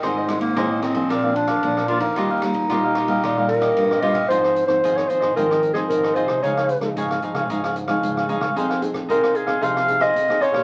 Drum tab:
RD |x-xxx-xxx-xxx-xx|x-xxx-xxx-xxx-xx|----------------|----------------|
HH |----------------|----------------|xxxxxxx-xxxxxxx-|xxxxxxxxxxxxx-x-|
SD |r-r-r-r-r--r-r--|r-r-r-r-r--r-r--|-r-r-r-r-r-r-r-r|-r-r-r-r-r-r-r-r|
BD |o--oo--oo--oo--o|o--oo--oo--oo--o|o--oo--oo--oo--o|o--oo--oo--oo--o|

RD |----------------|
HH |xxxxxxx-xxxxxxx-|
SD |-r-r-r-r-r-r-r-r|
BD |o--oo--oo--oo--o|